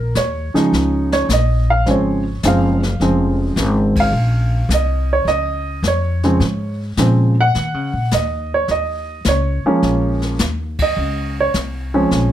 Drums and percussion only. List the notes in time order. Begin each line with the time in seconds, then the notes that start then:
0.15 snare, hi-hat pedal
0.55 snare
0.73 brush sweep, snare
1.12 snare
1.29 snare, hi-hat pedal
1.86 brush sweep, snare
2.43 snare, hi-hat pedal
2.83 snare
3.01 brush sweep, snare
3.57 snare, hi-hat pedal
3.96 kick, ride
4.14 brush sweep
4.70 snare, hi-hat pedal
5.27 brush sweep, snare
5.83 snare, hi-hat pedal
6.23 snare
6.40 brush sweep, snare
6.97 snare, hi-hat pedal
7.55 brush sweep, snare
8.11 snare, hi-hat pedal
8.68 brush sweep, snare
9.24 snare, hi-hat pedal
9.83 brush sweep, snare
10.22 snare
10.39 snare, hi-hat pedal
10.79 kick, ride
10.97 brush sweep
11.54 snare, hi-hat pedal
12.11 brush sweep, snare